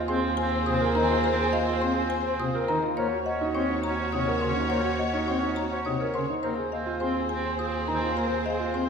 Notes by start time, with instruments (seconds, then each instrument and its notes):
Already playing: double bass D#2, grand piano F4, string section G#4 C5
0.08 pipe organ C4, oboe C4, grand piano G#4, marimba C5, celesta C6
0.23 grand piano F4
0.37 marimba G#5
0.41 oboe C4
0.52 grand piano C5
0.66 pipe organ C3, grand piano F4, marimba C5, celesta D#6
0.71 oboe C4
0.81 grand piano A#4
0.95 pipe organ D#3, grand piano D#4, marimba A#4, celesta A#5
1.02 oboe C4
1.10 grand piano F4
1.24 pipe organ A#3, marimba C5, grand piano C5
1.32 oboe C4
1.39 grand piano G#4
1.53 grand piano F4, celesta D#5, marimba F5
1.63 oboe C4
1.68 grand piano F4
1.81 pipe organ C4, grand piano G#4, marimba C5, celesta C6
1.93 oboe C4, grand piano F4
2.10 marimba G#5
2.23 oboe C4, grand piano C5
2.39 pipe organ C3, grand piano F4, marimba C5, celesta D#6
2.53 oboe C4, grand piano A#4
2.68 pipe organ D#3, grand piano D#4, marimba A#4, celesta A#5
2.83 grand piano F4
2.96 double bass D#2, pipe organ A#3, oboe C#4, string section F#4 C#5, grand piano C5, marimba C#5
3.12 grand piano F#4
3.26 oboe C#4, celesta D#5, marimba F#5
3.41 grand piano D#4
3.54 pipe organ C4, oboe C#4, grand piano F#4, marimba C#5, celesta C#6
3.70 grand piano D#4
3.84 marimba A#5
3.88 oboe C#4
3.99 grand piano C5
4.12 pipe organ C3, grand piano D#4, marimba C#5, celesta D#6
4.18 oboe C#4
4.27 grand piano A#4
4.41 pipe organ C#3, grand piano C#4, marimba C5, celesta C6
4.48 oboe C#4
4.56 grand piano D#4
4.70 pipe organ A#3, grand piano C5, marimba C#5
4.77 oboe C#4
4.85 grand piano F#4
4.99 celesta D#5, marimba F#5
5.08 oboe C#4
5.14 grand piano D#4
5.28 pipe organ C4, grand piano F#4, marimba C#5, celesta C#6
5.39 oboe C#4
5.43 grand piano D#4
5.56 marimba A#5
5.69 oboe C#4, grand piano C5
5.85 pipe organ C3, grand piano D#4, marimba C#5, celesta D#6
6.00 oboe C#4, grand piano A#4
6.14 pipe organ C#3, grand piano C#4, marimba C5, celesta C6
6.29 grand piano D#4
6.43 double bass D#2, pipe organ A#3, oboe C4, string section G#4 C5, marimba C5, grand piano C5
6.57 grand piano G#4
6.72 oboe C4, celesta D#5, marimba F5
6.86 grand piano F4
7.00 pipe organ C4, oboe C4, grand piano G#4, marimba C5, celesta C6
7.15 grand piano F4
7.29 marimba G#5
7.34 oboe C4
7.44 grand piano C5
7.59 grand piano F4, marimba C5, celesta D#6
7.64 oboe C4
7.87 pipe organ D#3, grand piano D#4, marimba A#4, celesta A#5
7.94 oboe C4
8.02 grand piano F4
8.16 pipe organ A#3, grand piano C5, marimba C5
8.24 oboe C4
8.30 grand piano G#4
8.46 celesta D#5, marimba F5
8.54 oboe C4
8.59 grand piano F4
8.74 pipe organ C4, grand piano G#4, marimba C5, celesta C6
8.85 oboe C4